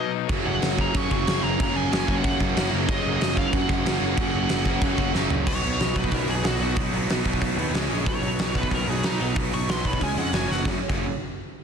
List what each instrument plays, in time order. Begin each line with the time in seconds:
Already playing: overdriven electric guitar B2 F#3 B3 D#4, lead electric guitar D#5
0.28 picked electric bass F#1, overdriven electric guitar F#2 C#3 F#3 A#3 C#4, kick, crash
0.46 picked electric bass F#1, lead electric guitar F#5
0.62 picked electric bass F#1, snare, crash
0.77 overdriven electric guitar F#2 C#3 F#3 A#3 C#4, lead electric guitar A#5, kick
0.94 picked electric bass F#2, lead electric guitar C#6, kick, crash
1.11 picked electric bass F#1, lead electric guitar C#6, kick
1.27 picked electric bass F#1, overdriven electric guitar F#2 C#3 F#3 A#3 C#4, snare, crash
1.43 picked electric bass F#1, lead electric guitar A#5
1.58 picked electric bass F#1, overdriven electric guitar F#2 C#3 F#3 A#3 C#4, lead electric guitar A#5, kick, crash
1.76 picked electric bass F#1, lead electric guitar G#5
1.93 picked electric bass F#1, lead electric guitar G#5, snare, crash
2.07 overdriven electric guitar F#2 C#3 F#3 A#3 C#4, kick
2.17 lead electric guitar F#5
2.24 picked electric bass F#2, lead electric guitar F#5, kick, crash
2.40 picked electric bass F#1, kick
2.56 picked electric bass F#1, overdriven electric guitar F#2 C#3 F#3 A#3 C#4, snare, crash
2.73 picked electric bass F#1
2.87 picked electric bass F#1, overdriven electric guitar F#2 C#3 F#3 A#3 C#4, lead electric guitar D#5, kick, crash
3.06 picked electric bass F#1
3.13 lead electric guitar D#5
3.21 picked electric bass F#1, snare, crash
3.36 overdriven electric guitar F#2 C#3 F#3 A#3 C#4, lead electric guitar F5, kick
3.53 picked electric bass F#2, lead electric guitar F#5, kick, crash
3.69 picked electric bass F#1, kick
3.85 picked electric bass F#1, overdriven electric guitar F#2 C#3 F#3 A#3 C#4, snare, crash
4.01 picked electric bass F#1
4.17 picked electric bass F#1, overdriven electric guitar F#2 C#3 F#3 A#3 C#4, kick, crash
4.35 picked electric bass F#1
4.49 picked electric bass F#1, snare, crash
4.66 overdriven electric guitar F#2 C#3 F#3 A#3 C#4, kick
4.81 picked electric bass F#2, kick, crash
4.98 picked electric bass F#1, kick
5.14 picked electric bass F#1, overdriven electric guitar F#2 C#3 F#3 A#3 C#4, snare
5.30 picked electric bass F#1, floor tom
5.47 picked electric bass B1, overdriven electric guitar B2 F#3 B3 D#4 F#4, lead electric guitar C#5, kick, crash
5.64 picked electric bass B1, overdriven electric guitar B2 F#3 B3 D#4 F#4, open hi-hat
5.80 picked electric bass B1, overdriven electric guitar B2 F#3 B3 D#4 F#4, snare, open hi-hat
5.95 picked electric bass B1, overdriven electric guitar B2 F#3 B3 D#4 F#4, lead electric guitar B4, kick, open hi-hat
6.04 kick
6.11 picked electric bass B1, overdriven electric guitar B2 F#3 B3 D#4 F#4, lead electric guitar A#4, kick, open hi-hat
6.28 picked electric bass B1, overdriven electric guitar B2 F#3 B3 D#4 F#4, lead electric guitar G#4, open hi-hat
6.44 picked electric bass B1, overdriven electric guitar B2 F#3 B3 D#4 F#4, lead electric guitar F#4, snare, open hi-hat
6.60 picked electric bass B1, overdriven electric guitar B2 F#3 B3 D#4 F#4, open hi-hat
6.76 picked electric bass B1, overdriven electric guitar B2 F#3 B3 D#4 F#4, kick, open hi-hat
6.92 picked electric bass B1, overdriven electric guitar B2 F#3 B3 D#4 F#4, open hi-hat
7.09 picked electric bass B1, overdriven electric guitar B2 F#3 B3 D#4 F#4, snare, open hi-hat
7.24 picked electric bass B1, overdriven electric guitar B2 F#3 B3 D#4 F#4, kick, open hi-hat
7.33 kick
7.40 picked electric bass B1, overdriven electric guitar B2 F#3 B3 D#4 F#4, kick, open hi-hat
7.57 picked electric bass D#2, overdriven electric guitar B2 F#3 B3 D#4 F#4, open hi-hat
7.72 picked electric bass C#2, overdriven electric guitar C#3 G#3 C#4 G#4, snare, open hi-hat
7.89 picked electric bass A#1, overdriven electric guitar C#3 G#3 C#4 G#4, open hi-hat
8.06 picked electric bass B1, overdriven electric guitar B2 F#3 B3 D#4 F#4, lead electric guitar C#5, kick, open hi-hat
8.22 picked electric bass B1, overdriven electric guitar B2 F#3 B3 D#4 F#4, open hi-hat
8.38 picked electric bass B1, overdriven electric guitar B2 F#3 B3 D#4 F#4, snare, open hi-hat
8.55 picked electric bass B1, overdriven electric guitar B2 F#3 B3 D#4 F#4, lead electric guitar B4, kick, open hi-hat
8.63 kick
8.71 picked electric bass B1, overdriven electric guitar B2 F#3 B3 D#4 F#4, lead electric guitar A#4, kick, open hi-hat
8.88 picked electric bass B1, overdriven electric guitar B2 F#3 B3 D#4 F#4, lead electric guitar G#4, open hi-hat
9.03 picked electric bass B1, overdriven electric guitar B2 F#3 B3 D#4 F#4, lead electric guitar D#4, snare, open hi-hat
9.19 picked electric bass B1, overdriven electric guitar B2 F#3 B3 D#4 F#4, open hi-hat
9.34 picked electric bass B1, overdriven electric guitar B2 F#3 B3 D#4 F#4, kick, open hi-hat
9.52 picked electric bass B1, overdriven electric guitar B2 F#3 B3 D#4 F#4, lead electric guitar C#6, open hi-hat
9.68 picked electric bass B1, overdriven electric guitar B2 F#3 B3 D#4 F#4, lead electric guitar C6, snare, open hi-hat
9.84 picked electric bass B1, overdriven electric guitar B2 F#3 B3 D#4 F#4, lead electric guitar B5, kick, open hi-hat
9.93 kick
10.00 picked electric bass C#2, overdriven electric guitar C#3 G#3 C#4 G#4, lead electric guitar G#5, kick, open hi-hat
10.15 picked electric bass F2, overdriven electric guitar C#3 G#3 C#4 G#4, lead electric guitar F#5, open hi-hat
10.32 picked electric bass F#1, distorted electric guitar F#2 C#3, overdriven electric guitar F#3 C#4 F#4 C#5, lead electric guitar G#5, snare, open hi-hat
10.48 picked electric bass F#1, distorted electric guitar F#2 C#3, overdriven electric guitar F#3 C#4 F#4 C#5, lead electric guitar F#5, snare
10.64 picked electric bass F#1, overdriven electric guitar F#2 C#3 F#3 A#3 C#4 F#4, kick, snare
10.89 picked electric bass F#1, overdriven electric guitar F#2 C#3 F#3 A#3 C#4 F#4, kick, crash